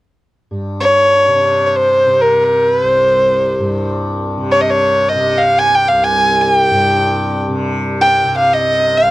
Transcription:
0.51 G2
0.81 C#5
1.28 C3
1.66 C#5
1.76 C5
2.06 C3
2.21 A#4
2.45 A#4
2.69 B4
2.83 C2 C5
3.59 G2
4.38 C3
4.52 C#5
4.61 D#5
4.70 C#5
5.09 D#5
5.15 C3
5.38 F5
5.59 G#5
5.75 G5
5.88 F5
5.93 C2
6.04 G#5
6.41 G#5
6.55 G5
6.71 G2
7.49 C3
8.01 G5
8.24 C3
8.38 F5
8.54 D#5
8.98 F5
9.02 C2

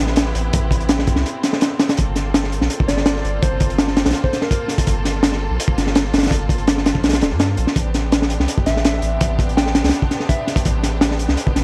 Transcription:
Already playing: B3 C4 E4 G4
0.00 A1
0.07 snare
0.16 snare, closed hi-hat
0.26 snare
0.35 A1, closed hi-hat
0.53 A1, kick, closed hi-hat
0.71 kick, closed hi-hat
0.81 closed hi-hat
0.89 snare, closed hi-hat
0.99 snare
1.07 kick, closed hi-hat
1.16 C2, snare
1.26 closed hi-hat
1.43 snare, closed hi-hat
1.53 snare
1.61 snare, closed hi-hat
1.79 snare, closed hi-hat
1.89 snare, closed hi-hat
1.97 G1 A#3 F4 A4, kick, closed hi-hat
2.16 snare, closed hi-hat
2.34 snare, closed hi-hat
2.44 snare
2.52 closed hi-hat
2.61 A#1, snare
2.70 closed hi-hat
2.80 kick
2.88 G1 D5, snare, closed hi-hat
2.97 snare
3.06 D5, snare, closed hi-hat
3.16 snare
3.24 G1, closed hi-hat
3.42 G1 C5, kick, closed hi-hat
3.60 kick, closed hi-hat
3.70 closed hi-hat
3.78 snare, closed hi-hat
3.88 snare
3.97 snare, closed hi-hat
4.06 A#1, snare, closed hi-hat
4.11 snare, closed hi-hat
4.14 closed hi-hat
4.24 C5, kick
4.32 C5, snare, closed hi-hat
4.41 A#4, snare
4.51 kick, closed hi-hat
4.68 snare, closed hi-hat
4.78 kick, closed hi-hat
4.87 G1, kick, closed hi-hat
5.05 snare, closed hi-hat
5.23 snare, closed hi-hat
5.32 snare
5.51 A#1
5.60 closed hi-hat
5.68 kick
5.77 G1, snare, closed hi-hat
5.87 snare
5.95 snare, closed hi-hat
6.05 snare
6.13 G1, snare, closed hi-hat
6.18 snare, closed hi-hat
6.23 snare, closed hi-hat
6.27 snare, closed hi-hat
6.31 G1, kick, closed hi-hat
6.49 kick, closed hi-hat
6.58 closed hi-hat
6.67 snare, closed hi-hat
6.78 snare
6.86 snare, closed hi-hat
6.95 A#1, kick
7.04 snare, closed hi-hat
7.09 snare, closed hi-hat
7.13 snare, closed hi-hat
7.21 D1, snare, closed hi-hat
7.31 G2, snare
7.40 snare, closed hi-hat
7.57 A#1, closed hi-hat
7.67 snare
7.76 A1 B3 C4 D4 G4, kick, closed hi-hat
7.94 snare, closed hi-hat
8.12 snare, closed hi-hat
8.22 snare
8.30 closed hi-hat
8.39 C2, snare
8.48 closed hi-hat
8.58 kick
8.66 A1 E5, snare, closed hi-hat
8.77 snare
8.85 E5, snare, closed hi-hat
8.94 snare
9.02 A1, closed hi-hat
9.21 A1, kick, closed hi-hat
9.39 kick, closed hi-hat
9.49 closed hi-hat
9.57 G5, snare, closed hi-hat
9.67 snare
9.75 snare, closed hi-hat
9.84 C2, snare, closed hi-hat
9.89 snare, closed hi-hat
9.93 closed hi-hat
10.02 kick
10.11 snare, closed hi-hat
10.20 snare
10.29 E5, kick, closed hi-hat
10.47 snare, closed hi-hat
10.56 kick, closed hi-hat
10.65 A1, kick, closed hi-hat
10.83 snare, closed hi-hat
11.01 snare, closed hi-hat
11.11 snare
11.19 closed hi-hat
11.29 C2, snare
11.37 closed hi-hat
11.47 kick
11.56 A1, snare, closed hi-hat

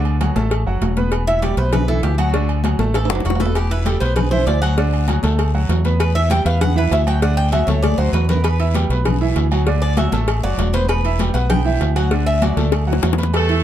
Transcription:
Already playing: D2 D3 D4 D5
0.05 high conga, low agogo
0.21 F#3 F#4 F#5, cowbell, high conga, low timbale, low agogo
0.36 A1 A3 A4 A5, cowbell, high conga
0.51 cowbell, high conga, low agogo
0.66 F#1 F#3 F#4 F#5, high conga
0.81 E1, cowbell, high conga, low timbale, low agogo
0.97 B3 B4 B5, cowbell, high conga
1.12 cowbell, high conga, low agogo
1.27 E4 E5 E6, high conga, low agogo
1.42 G3 G4 D5 G5, cowbell, high conga, low timbale, low agogo
1.57 B1 B3 B4 C5 B5, cowbell, high conga
1.73 B4, cowbell, high conga, low conga, low agogo
1.88 E3 E4 A4 E5, high conga, low conga
2.03 D2 G4, cowbell, high conga, low timbale, low agogo
2.18 F#3 F#4 F#5, high conga, low agogo
2.33 D3 D4 D5, cowbell, high conga
2.49 high conga, low agogo
2.64 F#3 F#4 F#5, cowbell, high conga, low timbale, low agogo
2.79 A1 A3 A4 A5, cowbell, high conga
2.94 A4, cowbell, high conga, high timbale, low agogo
3.05 F#3, high timbale
3.10 F#1 D4 F#4 F#5, high bongo
3.15 high timbale
3.20 low bongo
3.24 E1 F#4, cowbell, high conga, low timbale, low agogo
3.30 low bongo
3.35 low timbale
3.40 B3 A4 B4 B5, cowbell, low bongo, high conga
3.46 low timbale
3.55 G4, cowbell, high conga, low agogo, long guiro
3.71 E4 B4 E5 E6, high conga, low agogo
3.85 G3 G4 A4 G5, cowbell, high conga, low timbale, low agogo, short guiro
4.00 B1 B3 B4 C5 B5, cowbell, high conga, short guiro
4.16 B4, cowbell, high conga, low conga, low agogo, long guiro
4.31 E3 E4 C5 E5, high conga, low conga
4.47 D2 D5, cowbell, high conga, low timbale, low agogo, short guiro
4.62 F#3 F#4 F#5, low agogo, short guiro
4.78 D3 D4 D5, cowbell, long guiro
4.93 high conga, low agogo
5.08 F#3 F#4 F#5, cowbell, high conga, low timbale, low agogo, short guiro
5.23 D2 A3 A4 A5, cowbell, high conga, short guiro
5.39 cowbell, high conga, low agogo, long guiro
5.54 F#3 F#4 F#5, high conga
5.69 E2, cowbell, high conga, low timbale, low agogo, short guiro
5.84 B3 B4 B5, cowbell, high conga, short guiro
6.00 B4, cowbell, high conga, low agogo, long guiro
6.15 E4 E5 E6, high conga, low agogo
6.30 G3 G4 G5, cowbell, high conga, low timbale, low agogo, short guiro
6.45 E2 B3 B4 F5 B5, cowbell, high conga, short guiro
6.61 F#5, cowbell, high conga, low conga, low agogo, long guiro
6.75 E3 E4 B4 E5, high conga, low conga
6.91 D2 E5, cowbell, high conga, low timbale, low agogo, short guiro
7.07 F#3 F#4 F#5 G5, low agogo, short guiro
7.22 D3 D4 D5 F#5, cowbell, high conga, long guiro
7.37 G5, high conga, low agogo
7.52 F#3 F#4 E5 F#5, cowbell, high conga, low timbale, low agogo, short guiro
7.67 D2 A3 A4 C#5 A5, cowbell, high conga, short guiro
7.83 D5, cowbell, high conga, low agogo, long guiro
7.98 D2 F#3 F#4 C5 F#5
8.13 E2 B4, cowbell, low timbale, low agogo, short guiro
8.29 B3 A#4 B4 B5, cowbell, low conga, short guiro
8.44 B4, cowbell, high conga, low agogo, long guiro
8.59 E4 E5 E6, high conga, low agogo
8.74 G3 G4 G5, cowbell, high conga, low timbale, low agogo, short guiro
8.90 B1 B3 B4 B5, cowbell, high conga, short guiro
9.05 cowbell, high conga, low conga, low agogo, long guiro
9.21 E3 E4 E5, high conga
9.36 D2, cowbell, high conga, low timbale, low agogo, short guiro
9.51 F#3 F#4 F#5, low agogo, short guiro
9.67 D3 D4 D5, cowbell, long guiro
9.82 D5, high conga, low agogo
9.97 F#3 F#4 E5 F#5, cowbell, high conga, low timbale, low agogo, short guiro
10.12 A1 A3 A4 A5, cowbell, high conga, short guiro
10.28 cowbell, high conga, low agogo, long guiro
10.43 F#1 F#3 F#4 D5 F#5, high conga
10.58 E1, cowbell, high conga, low timbale, low agogo, short guiro
10.73 B3 B4 C5 B5, cowbell, high conga, short guiro
10.89 B4, cowbell, high conga, low agogo, long guiro
11.05 E4 E5 E6, high conga, low agogo
11.19 G3 G4 G5, cowbell, high conga, low timbale, low agogo, short guiro
11.34 B1 B3 B4 F#5 B5, cowbell, high conga, short guiro
11.50 G5, cowbell, high conga, low conga, low agogo, long guiro
11.65 E3 E4 E5, high conga
11.81 D2, cowbell, high conga, low timbale, low agogo, short guiro
11.96 F#3 F#4 F#5, low agogo, short guiro
12.11 D3 D4 D5, cowbell, long guiro
12.26 E5, high conga, low agogo
12.41 F#3 F#4 D5 F#5, cowbell, high conga, low timbale, low agogo, short guiro
12.57 D2 A3 A4 A5, cowbell, high conga, short guiro
12.72 cowbell, high bongo, high conga, low agogo, long guiro
12.87 F#3 F#4 F#5
12.93 low bongo
13.03 E2, cowbell, low bongo, high conga, low timbale, low agogo, short guiro
13.13 low bongo
13.18 B3 B4 B5, cowbell, high conga, short guiro
13.23 low bongo
13.33 G3 A3 G4 A4 B4, cowbell, low agogo, long guiro
13.49 E3 E4 E5, high conga, low agogo

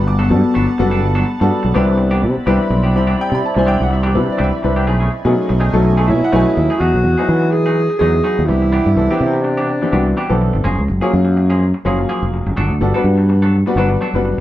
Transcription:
Already playing: G1 G3 B3 D4 F#4 B4 F#5 A5
0.07 D6, muted clean electric guitar stroke
0.19 F#3 B3 D4 A4
0.30 G2 G3 B3 D4 F#4 A4, muted clean electric guitar stroke
0.45 muted fretless electric bass stroke
0.54 G1 F#3 B3 D4 A4
0.67 muted clean electric guitar stroke
0.77 F#1 G3 B3 D4 F#4 A4, muted clean electric guitar stroke
0.91 B3 D4 A4
1.04 G1
1.15 F#3 B3 D4 A4
1.26 muted clean electric guitar stroke
1.40 G2 G3 B3 D4 F#4 A4, muted clean electric guitar stroke
1.63 B1, muted clean electric guitar stroke
1.73 C2 E3 G3 B3 C4 D4 E4 G4 B4 D5 B5
1.87 muted clean electric guitar stroke
1.97 muted clean electric guitar stroke
2.11 E3 B3 D4 G4
2.23 C3, muted clean electric guitar stroke
2.37 muted fretless electric bass stroke
2.46 C2 E3 G3 B3 C4 D4 E4 G4 B4
2.60 muted clean electric guitar stroke
2.70 B1, muted clean electric guitar stroke
2.83 B3 D4 G4
2.94 C2 G3 C4 D4 E4 G4 B5
3.07 E3 B3 D4 G4
3.12 D5
3.17 G5, muted clean electric guitar stroke
3.30 C3, muted clean electric guitar stroke
3.35 B5
3.46 A5
3.54 C2 G3 C4 D4 E4 C5, muted clean electric guitar stroke
3.59 G#5
3.66 E3 B3 D4 G4 G5
3.79 C2 F#5, muted clean electric guitar stroke
3.90 E5, muted clean electric guitar stroke
4.03 E3 B3 D4 G4
4.14 C3 G3 C4 D4 E4 B4, muted clean electric guitar stroke
4.29 D5, muted fretless electric bass stroke
4.38 C2 E3 B3 D4 G4
4.43 E5
4.51 muted clean electric guitar stroke
4.62 C2 G3 C4 D4 E4 B4, muted clean electric guitar stroke
4.76 B3 D4 G4
4.86 B1 D#3 A3 C#4 G#4 D#5 G#5
5.00 D#3 A3 C#4 G#4
5.11 muted clean electric guitar stroke
5.25 B2 F#3 A3 C#4 D#4 G#4, muted clean electric guitar stroke
5.49 B1, muted clean electric guitar stroke
5.60 D#3 A3 C#4 G#4
5.73 B1 F#3 A3 C#4 D#4 A4, muted clean electric guitar stroke
5.84 muted clean electric guitar stroke
5.97 D#3 A3 C#4 G#4 A4
6.07 B2 E4 C#5, muted clean electric guitar stroke
6.22 F#5, muted fretless electric bass stroke
6.32 B1 D#3 F#3 A3 C#4 G#4 B4 D#5
6.36 G#5
6.45 muted clean electric guitar stroke
6.57 D#2, muted clean electric guitar stroke
6.70 A3 C#4 G#4
6.79 E2 F#3 B3 D#4 F#4 G#4
6.94 B1
7.04 E2, muted clean electric guitar stroke
7.18 F#3 B3 D#4 E4 G#4
7.29 E3, muted clean electric guitar stroke
7.42 muted clean electric guitar stroke
7.51 G#4, muted clean electric guitar stroke
7.66 F#3 B3 D#4 G#4
7.90 muted clean electric guitar stroke
7.99 E2 F#3 B3 D#4 E4 G#4
8.13 muted clean electric guitar stroke
8.23 F#3 B3 D#4 G#4
8.39 D#2
8.45 C2 E3 B3 C4 D4 E4 G4, muted clean electric guitar stroke
8.62 muted clean electric guitar stroke
8.72 E3 B3 D4 G4
8.86 G2
8.96 C2 E3 B3 C4 D4 A4, muted clean electric guitar stroke
9.10 E3 B3 C4 D4 G4
9.20 C3, muted clean electric guitar stroke
9.33 muted clean electric guitar stroke
9.42 D4, muted clean electric guitar stroke
9.57 E3 B3 D4 G4
9.82 E3 B3 C4 D4 G4, muted clean electric guitar stroke
9.92 C2 E3 B3 C4 D4 F#4 G4
10.06 muted clean electric guitar stroke
10.17 E3 B3 D4 G4
10.29 B1 E3 B3 C4 D4 A4
10.41 muted clean electric guitar stroke
10.53 G1, muted clean electric guitar stroke
10.64 F#1 F3 A#3 C#4 G#4
10.78 C#2
10.88 F#1, muted clean electric guitar stroke
11.01 F#3 A#3 C#4 F4 G#4
11.12 F#2, muted clean electric guitar stroke
11.25 muted clean electric guitar stroke
11.37 muted clean electric guitar stroke
11.50 F3 A#3 C#4 G#4
11.74 muted clean electric guitar stroke
11.85 F#1 F3 F#3 A#3 C#4 F4 G#4
11.99 muted clean electric guitar stroke
12.09 F3 A#3 C#4 G#4
12.23 F1
12.33 muted clean electric guitar stroke
12.46 F#1, muted clean electric guitar stroke
12.57 G1 F#3 B3 D4 A4
12.70 D2
12.80 G1 G3 B3 D4 F#4 A4, muted clean electric guitar stroke
12.94 G3 B3 D4 F#4 A4 B4
13.04 G2, muted clean electric guitar stroke
13.18 muted clean electric guitar stroke
13.29 muted clean electric guitar stroke
13.42 F#3 B3 D4 A4
13.66 G3 B3 D4 F#4 B4, muted clean electric guitar stroke
13.76 G1 F#3 G3 B3 D4 F#4 A4 B4
13.90 muted clean electric guitar stroke
14.01 F#3 B3 D4 A4
14.14 F#1 G3 B3 D4 F#4 B4
14.25 muted clean electric guitar stroke

